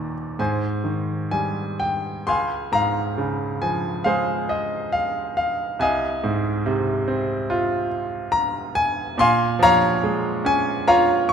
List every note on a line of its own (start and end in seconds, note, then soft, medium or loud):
0.00 0.35 D#2 soft
0.00 0.36 A#2 soft
0.00 0.36 D#3 soft
0.00 0.13 C#5 soft
0.00 0.40 G#5 medium
0.00 0.35 A#5 medium
0.39 2.24 G#2 soft
0.39 2.25 C5 soft
0.39 1.30 G#5 medium
0.84 2.23 D#3 soft
1.31 2.24 G3 soft
1.31 1.82 G#5 medium
1.80 2.29 G5 medium
2.27 5.77 C#2 soft
2.27 2.73 F5 medium
2.27 3.60 G#5 medium
2.27 2.75 C6 medium
2.72 4.46 G#2 soft
2.72 4.03 F5 medium
2.72 3.66 A#5 medium
3.18 4.90 C#3 soft
3.62 5.33 F3 soft
3.62 4.03 G#5 medium
4.04 5.76 G#3 soft
4.04 5.77 G#4 soft
4.04 5.77 C5 medium
4.04 4.51 F5 medium
4.49 4.95 D#5 medium
4.92 5.35 F5 medium
5.37 5.81 F5 medium
5.79 9.13 C2 medium
5.79 7.46 D#5 medium
5.79 7.46 F5 medium
5.79 6.62 G#5 medium
6.24 7.86 G#2 soft
6.66 8.28 C3 medium
7.08 8.71 C4 soft
7.50 9.14 F4 medium
8.32 8.76 A#5 medium
8.75 9.19 G#5 medium
9.18 11.33 A#2 medium
9.18 9.62 F5 medium
9.18 10.45 G#5 medium
9.18 9.63 C6 loud
9.59 11.26 F3 medium
9.59 10.86 C#5 medium
9.59 10.86 F5 medium
9.59 10.49 A#5 loud
10.04 11.33 G#3 medium
10.45 11.33 C#4 medium
10.45 10.89 G#5 medium
10.88 11.33 F4 medium
10.88 11.33 C#5 medium
10.88 11.33 F5 medium
10.88 11.32 A#5 medium
11.29 11.33 C#6 medium